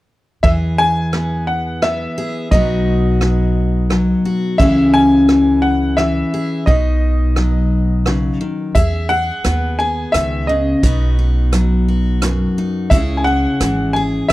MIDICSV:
0, 0, Header, 1, 5, 480
1, 0, Start_track
1, 0, Key_signature, 4, "major"
1, 0, Tempo, 692841
1, 306, Time_signature, 3, 2, 24, 8
1, 9926, End_track
2, 0, Start_track
2, 0, Title_t, "Upright piano"
2, 0, Program_c, 0, 0
2, 297, Note_on_c, 0, 76, 81
2, 352, Note_off_c, 0, 76, 0
2, 543, Note_on_c, 0, 80, 106
2, 997, Note_off_c, 0, 80, 0
2, 1020, Note_on_c, 0, 78, 70
2, 1265, Note_on_c, 0, 76, 75
2, 1270, Note_off_c, 0, 78, 0
2, 1717, Note_off_c, 0, 76, 0
2, 1741, Note_on_c, 0, 75, 67
2, 2915, Note_off_c, 0, 75, 0
2, 3174, Note_on_c, 0, 76, 81
2, 3403, Note_off_c, 0, 76, 0
2, 3420, Note_on_c, 0, 80, 105
2, 3893, Note_on_c, 0, 78, 77
2, 3917, Note_off_c, 0, 80, 0
2, 4134, Note_on_c, 0, 76, 73
2, 4147, Note_off_c, 0, 78, 0
2, 4592, Note_off_c, 0, 76, 0
2, 4614, Note_on_c, 0, 75, 69
2, 5792, Note_off_c, 0, 75, 0
2, 6060, Note_on_c, 0, 76, 75
2, 6298, Note_on_c, 0, 78, 97
2, 6310, Note_off_c, 0, 76, 0
2, 6754, Note_off_c, 0, 78, 0
2, 6780, Note_on_c, 0, 80, 83
2, 7006, Note_off_c, 0, 80, 0
2, 7012, Note_on_c, 0, 76, 75
2, 7242, Note_off_c, 0, 76, 0
2, 7255, Note_on_c, 0, 75, 68
2, 7713, Note_off_c, 0, 75, 0
2, 8937, Note_on_c, 0, 76, 73
2, 8981, Note_off_c, 0, 76, 0
2, 9126, Note_on_c, 0, 80, 59
2, 9176, Note_on_c, 0, 78, 85
2, 9181, Note_off_c, 0, 80, 0
2, 9633, Note_off_c, 0, 78, 0
2, 9653, Note_on_c, 0, 80, 82
2, 9708, Note_off_c, 0, 80, 0
2, 9897, Note_on_c, 0, 76, 78
2, 9926, Note_off_c, 0, 76, 0
2, 9926, End_track
3, 0, Start_track
3, 0, Title_t, "Steel-string acoustic guitar"
3, 0, Program_c, 1, 25
3, 303, Note_on_c, 1, 52, 69
3, 307, Note_on_c, 1, 68, 57
3, 783, Note_on_c, 1, 59, 50
3, 1256, Note_off_c, 1, 59, 0
3, 1265, Note_on_c, 1, 59, 57
3, 1500, Note_off_c, 1, 68, 0
3, 1509, Note_on_c, 1, 68, 65
3, 1716, Note_off_c, 1, 59, 0
3, 1718, Note_off_c, 1, 68, 0
3, 1743, Note_on_c, 1, 47, 69
3, 1744, Note_off_c, 1, 52, 0
3, 1750, Note_on_c, 1, 54, 60
3, 1754, Note_on_c, 1, 59, 56
3, 1759, Note_on_c, 1, 63, 57
3, 1763, Note_on_c, 1, 66, 61
3, 2219, Note_off_c, 1, 54, 0
3, 2228, Note_on_c, 1, 54, 52
3, 2697, Note_off_c, 1, 54, 0
3, 2706, Note_on_c, 1, 54, 53
3, 2939, Note_off_c, 1, 66, 0
3, 2947, Note_on_c, 1, 66, 57
3, 3156, Note_off_c, 1, 54, 0
3, 3160, Note_off_c, 1, 59, 0
3, 3163, Note_off_c, 1, 63, 0
3, 3181, Note_off_c, 1, 47, 0
3, 3184, Note_on_c, 1, 49, 74
3, 3186, Note_off_c, 1, 66, 0
3, 3189, Note_on_c, 1, 52, 57
3, 3194, Note_on_c, 1, 61, 60
3, 3200, Note_on_c, 1, 64, 60
3, 3204, Note_on_c, 1, 68, 59
3, 3656, Note_off_c, 1, 52, 0
3, 3664, Note_off_c, 1, 49, 0
3, 3664, Note_on_c, 1, 52, 57
3, 4138, Note_off_c, 1, 52, 0
3, 4146, Note_on_c, 1, 52, 56
3, 4382, Note_off_c, 1, 68, 0
3, 4390, Note_on_c, 1, 68, 64
3, 4599, Note_off_c, 1, 68, 0
3, 4601, Note_off_c, 1, 61, 0
3, 4604, Note_off_c, 1, 64, 0
3, 4626, Note_off_c, 1, 52, 0
3, 4628, Note_on_c, 1, 47, 66
3, 4633, Note_on_c, 1, 63, 55
3, 5105, Note_on_c, 1, 54, 55
3, 5586, Note_off_c, 1, 47, 0
3, 5589, Note_on_c, 1, 49, 53
3, 5821, Note_off_c, 1, 49, 0
3, 5824, Note_on_c, 1, 51, 58
3, 6037, Note_off_c, 1, 54, 0
3, 6041, Note_off_c, 1, 63, 0
3, 6065, Note_off_c, 1, 51, 0
3, 6075, Note_on_c, 1, 68, 62
3, 6297, Note_off_c, 1, 68, 0
3, 6305, Note_on_c, 1, 68, 53
3, 6543, Note_on_c, 1, 59, 52
3, 6779, Note_off_c, 1, 68, 0
3, 6787, Note_on_c, 1, 68, 55
3, 7029, Note_on_c, 1, 51, 51
3, 7267, Note_off_c, 1, 51, 0
3, 7269, Note_on_c, 1, 49, 59
3, 7476, Note_off_c, 1, 59, 0
3, 7478, Note_off_c, 1, 68, 0
3, 7503, Note_off_c, 1, 49, 0
3, 7506, Note_on_c, 1, 47, 73
3, 7510, Note_on_c, 1, 59, 59
3, 7514, Note_on_c, 1, 63, 62
3, 7520, Note_on_c, 1, 66, 62
3, 7742, Note_off_c, 1, 63, 0
3, 7751, Note_on_c, 1, 63, 47
3, 7987, Note_on_c, 1, 54, 56
3, 8225, Note_off_c, 1, 66, 0
3, 8234, Note_on_c, 1, 66, 56
3, 8466, Note_off_c, 1, 47, 0
3, 8467, Note_on_c, 1, 42, 55
3, 8707, Note_off_c, 1, 63, 0
3, 8715, Note_on_c, 1, 63, 61
3, 8918, Note_off_c, 1, 54, 0
3, 8919, Note_off_c, 1, 59, 0
3, 8922, Note_off_c, 1, 63, 0
3, 8947, Note_off_c, 1, 42, 0
3, 8949, Note_on_c, 1, 49, 74
3, 8950, Note_off_c, 1, 66, 0
3, 8954, Note_on_c, 1, 61, 59
3, 8959, Note_on_c, 1, 64, 60
3, 8964, Note_on_c, 1, 68, 63
3, 9186, Note_off_c, 1, 64, 0
3, 9194, Note_on_c, 1, 64, 49
3, 9428, Note_off_c, 1, 49, 0
3, 9428, Note_on_c, 1, 52, 51
3, 9665, Note_off_c, 1, 68, 0
3, 9673, Note_on_c, 1, 68, 55
3, 9926, Note_off_c, 1, 52, 0
3, 9926, Note_off_c, 1, 61, 0
3, 9926, Note_off_c, 1, 64, 0
3, 9926, Note_off_c, 1, 68, 0
3, 9926, End_track
4, 0, Start_track
4, 0, Title_t, "Upright bass"
4, 0, Program_c, 2, 32
4, 303, Note_on_c, 2, 40, 70
4, 1418, Note_off_c, 2, 40, 0
4, 1743, Note_on_c, 2, 35, 80
4, 2858, Note_off_c, 2, 35, 0
4, 3184, Note_on_c, 2, 37, 78
4, 4299, Note_off_c, 2, 37, 0
4, 4623, Note_on_c, 2, 35, 73
4, 5739, Note_off_c, 2, 35, 0
4, 6066, Note_on_c, 2, 40, 74
4, 6437, Note_off_c, 2, 40, 0
4, 6547, Note_on_c, 2, 39, 65
4, 6955, Note_off_c, 2, 39, 0
4, 7027, Note_on_c, 2, 37, 74
4, 7435, Note_off_c, 2, 37, 0
4, 7504, Note_on_c, 2, 35, 78
4, 8619, Note_off_c, 2, 35, 0
4, 8946, Note_on_c, 2, 37, 85
4, 9317, Note_off_c, 2, 37, 0
4, 9426, Note_on_c, 2, 32, 68
4, 9834, Note_off_c, 2, 32, 0
4, 9905, Note_on_c, 2, 33, 76
4, 9926, Note_off_c, 2, 33, 0
4, 9926, End_track
5, 0, Start_track
5, 0, Title_t, "Drums"
5, 303, Note_on_c, 9, 36, 82
5, 373, Note_off_c, 9, 36, 0
5, 781, Note_on_c, 9, 37, 61
5, 851, Note_off_c, 9, 37, 0
5, 1262, Note_on_c, 9, 37, 71
5, 1331, Note_off_c, 9, 37, 0
5, 1743, Note_on_c, 9, 36, 91
5, 1813, Note_off_c, 9, 36, 0
5, 2223, Note_on_c, 9, 37, 66
5, 2292, Note_off_c, 9, 37, 0
5, 2704, Note_on_c, 9, 37, 73
5, 2773, Note_off_c, 9, 37, 0
5, 3184, Note_on_c, 9, 36, 95
5, 3254, Note_off_c, 9, 36, 0
5, 3662, Note_on_c, 9, 37, 67
5, 3731, Note_off_c, 9, 37, 0
5, 4142, Note_on_c, 9, 37, 68
5, 4211, Note_off_c, 9, 37, 0
5, 4623, Note_on_c, 9, 36, 91
5, 4693, Note_off_c, 9, 36, 0
5, 5100, Note_on_c, 9, 37, 68
5, 5170, Note_off_c, 9, 37, 0
5, 5582, Note_on_c, 9, 37, 77
5, 5652, Note_off_c, 9, 37, 0
5, 6063, Note_on_c, 9, 42, 55
5, 6064, Note_on_c, 9, 36, 91
5, 6133, Note_off_c, 9, 36, 0
5, 6133, Note_off_c, 9, 42, 0
5, 6543, Note_on_c, 9, 37, 66
5, 6543, Note_on_c, 9, 42, 47
5, 6612, Note_off_c, 9, 37, 0
5, 6612, Note_off_c, 9, 42, 0
5, 7026, Note_on_c, 9, 37, 73
5, 7026, Note_on_c, 9, 42, 50
5, 7095, Note_off_c, 9, 37, 0
5, 7095, Note_off_c, 9, 42, 0
5, 7505, Note_on_c, 9, 36, 91
5, 7505, Note_on_c, 9, 42, 52
5, 7574, Note_off_c, 9, 36, 0
5, 7575, Note_off_c, 9, 42, 0
5, 7984, Note_on_c, 9, 37, 67
5, 7984, Note_on_c, 9, 42, 51
5, 8054, Note_off_c, 9, 37, 0
5, 8054, Note_off_c, 9, 42, 0
5, 8465, Note_on_c, 9, 37, 80
5, 8465, Note_on_c, 9, 42, 54
5, 8534, Note_off_c, 9, 37, 0
5, 8534, Note_off_c, 9, 42, 0
5, 8945, Note_on_c, 9, 36, 97
5, 8945, Note_on_c, 9, 42, 53
5, 9014, Note_off_c, 9, 36, 0
5, 9015, Note_off_c, 9, 42, 0
5, 9425, Note_on_c, 9, 37, 65
5, 9425, Note_on_c, 9, 42, 54
5, 9495, Note_off_c, 9, 37, 0
5, 9495, Note_off_c, 9, 42, 0
5, 9905, Note_on_c, 9, 37, 76
5, 9905, Note_on_c, 9, 42, 59
5, 9926, Note_off_c, 9, 37, 0
5, 9926, Note_off_c, 9, 42, 0
5, 9926, End_track
0, 0, End_of_file